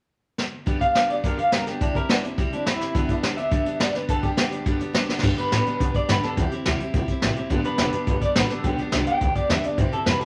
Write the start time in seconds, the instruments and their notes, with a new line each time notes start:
0.38 snare
0.66 steel-string acoustic guitar G2 D3 G3 B3 D4 G4, kick, closed hi-hat
0.79 steel-string acoustic guitar G3 B3 D4 G4, clean electric guitar F5, kick, closed hi-hat
0.95 steel-string acoustic guitar G3 B3 D4 G4, snare, closed hi-hat
1.09 steel-string acoustic guitar G3 B3 D4 G4, clean electric guitar D5, closed hi-hat
1.24 steel-string acoustic guitar G2 D3 G3 B3 D4 G4, clean electric guitar A#4, kick, closed hi-hat
1.37 steel-string acoustic guitar G3 B3 D4 G4, clean electric guitar F5, closed hi-hat
1.52 steel-string acoustic guitar G3 B3 D4 G4, clean electric guitar A#4, snare, closed hi-hat
1.66 steel-string acoustic guitar G3 B3 D4 G4, clean electric guitar G4, snare, closed hi-hat
1.81 steel-string acoustic guitar C3 G3 C4 E4 G4, clean electric guitar D4, kick, closed hi-hat
1.95 steel-string acoustic guitar C4 E4 G4, clean electric guitar A#4, kick, closed hi-hat
2.09 steel-string acoustic guitar G3 C4 E4 G4, clean electric guitar D4, snare, closed hi-hat
2.23 steel-string acoustic guitar C4 E4 G4, closed hi-hat
2.38 steel-string acoustic guitar C3 G3 C4 E4 G4, kick, closed hi-hat
2.52 steel-string acoustic guitar C4 E4 G4, clean electric guitar D4, closed hi-hat
2.66 steel-string acoustic guitar G3 C4 E4 G4, clean electric guitar E4, snare, closed hi-hat
2.80 steel-string acoustic guitar C4 E4 G4, snare, closed hi-hat
2.95 steel-string acoustic guitar G2 D3 G3 B3 D4 G4, kick, closed hi-hat
3.09 steel-string acoustic guitar G3 B3 D4 G4, kick, closed hi-hat
3.23 steel-string acoustic guitar G3 B3 D4 G4, snare, closed hi-hat
3.37 steel-string acoustic guitar G3 B3 D4 G4, clean electric guitar E5, closed hi-hat
3.51 steel-string acoustic guitar G2 D3 G3 B3 D4 G4, kick, closed hi-hat
3.65 steel-string acoustic guitar G3 B3 D4 G4, closed hi-hat
3.80 steel-string acoustic guitar G3 B3 D4 G4, clean electric guitar D5, snare, closed hi-hat
3.94 steel-string acoustic guitar G3 B3 D4 G4, clean electric guitar B4, snare, closed hi-hat
4.08 steel-string acoustic guitar G2 D3 G3 B3 D4 G4, clean electric guitar A4, kick, closed hi-hat
4.23 steel-string acoustic guitar G3 B3 D4 G4, clean electric guitar G4, kick, closed hi-hat
4.37 steel-string acoustic guitar G3 B3 D4 G4, snare, closed hi-hat
4.51 steel-string acoustic guitar G3 B3 D4 G4, closed hi-hat
4.66 steel-string acoustic guitar G2 D3 G3 B3 D4 G4, kick, closed hi-hat
4.80 steel-string acoustic guitar G3 B3 D4 G4, closed hi-hat
4.93 steel-string acoustic guitar G3 B3 D4 G4, snare, closed hi-hat
5.09 steel-string acoustic guitar G3 B3 D4 G4, snare
5.19 steel-string acoustic guitar G2, snare
5.23 upright bass G2, steel-string acoustic guitar D3 G3 B3 D4 G4, kick, crash
5.37 steel-string acoustic guitar G3 B3 D4 G4, clean electric guitar B4, muted upright bass stroke, closed hi-hat
5.52 steel-string acoustic guitar G2 D3 G3 B3 D4 G4, upright bass A2, snare, closed hi-hat
5.66 steel-string acoustic guitar G3 B3 D4 G4, closed hi-hat
5.80 upright bass B2, steel-string acoustic guitar G3 B3 D4 G4, kick, closed hi-hat
5.94 steel-string acoustic guitar G3 B3 D4 G4, clean electric guitar D5, kick, closed hi-hat
6.09 steel-string acoustic guitar G2 D3 G3 B3 D4 G4, upright bass G2, clean electric guitar B4, snare, closed hi-hat
6.23 steel-string acoustic guitar G3 B3 D4 G4, clean electric guitar A4, muted upright bass stroke, snare, closed hi-hat
6.37 upright bass E2, steel-string acoustic guitar C3 G3 C4 E4 G4, clean electric guitar G4, kick, closed hi-hat
6.51 steel-string acoustic guitar C4 E4 G4, closed hi-hat
6.65 upright bass D2, steel-string acoustic guitar C3 G3 C4 E4 G4, snare, closed hi-hat
6.80 steel-string acoustic guitar C4 E4 G4, muted upright bass stroke, closed hi-hat
6.94 upright bass C2, steel-string acoustic guitar G3 C4 E4 G4, kick, closed hi-hat
7.08 steel-string acoustic guitar C4 E4 G4, muted upright bass stroke, kick, closed hi-hat
7.22 upright bass A1, steel-string acoustic guitar C3 G3 C4 E4 G4, snare, closed hi-hat
7.36 steel-string acoustic guitar C4 E4 G4, muted upright bass stroke, closed hi-hat
7.50 upright bass G1, steel-string acoustic guitar G2 D3 G3 B3 D4 G4, kick, closed hi-hat
7.64 steel-string acoustic guitar G3 B3 D4 G4, clean electric guitar B4, closed hi-hat
7.78 upright bass F1, steel-string acoustic guitar G2 D3 G3 B3 D4 G4, snare, closed hi-hat
7.92 steel-string acoustic guitar G3 B3 D4 G4, muted upright bass stroke, closed hi-hat
8.07 upright bass G1, steel-string acoustic guitar G3 B3 D4 G4, kick, closed hi-hat
8.21 steel-string acoustic guitar G3 B3 D4 G4, clean electric guitar D5, muted upright bass stroke, kick, closed hi-hat
8.36 upright bass A1, steel-string acoustic guitar G2 D3 G3 B3 D4 G4, clean electric guitar B4, snare, closed hi-hat
8.50 steel-string acoustic guitar G3 B3 D4 G4, clean electric guitar A4, snare, closed hi-hat
8.64 upright bass B1, steel-string acoustic guitar G2 D3 G3 B3 D4 G4, clean electric guitar G4, kick, closed hi-hat
8.78 steel-string acoustic guitar B3 D4 G4, muted upright bass stroke, closed hi-hat
8.82 steel-string acoustic guitar G3
8.92 upright bass C2, steel-string acoustic guitar G2 D3 G3 B3 D4 G4, snare, closed hi-hat
9.06 steel-string acoustic guitar B3 D4 G4, clean electric guitar G5, muted upright bass stroke, closed hi-hat
9.11 steel-string acoustic guitar G3
9.21 upright bass D2, steel-string acoustic guitar G3 B3 D4, kick, closed hi-hat
9.25 steel-string acoustic guitar G4
9.35 steel-string acoustic guitar G3 B3 D4 G4, clean electric guitar D5, kick, closed hi-hat
9.49 upright bass E2, steel-string acoustic guitar G2 D3 G3 B3 D4 G4, clean electric guitar E5, snare, closed hi-hat
9.64 steel-string acoustic guitar B3 D4 G4, clean electric guitar D5, closed hi-hat
9.68 steel-string acoustic guitar G3
9.78 upright bass G2, steel-string acoustic guitar C3 G3 C4 E4 G4, clean electric guitar C5, kick, closed hi-hat
9.92 steel-string acoustic guitar C4 E4 G4, clean electric guitar A4, muted upright bass stroke, closed hi-hat
10.06 upright bass F2, steel-string acoustic guitar C3 G3 C4 E4 G4, clean electric guitar B4, snare, closed hi-hat
10.19 steel-string acoustic guitar E4 G4, clean electric guitar A4, closed hi-hat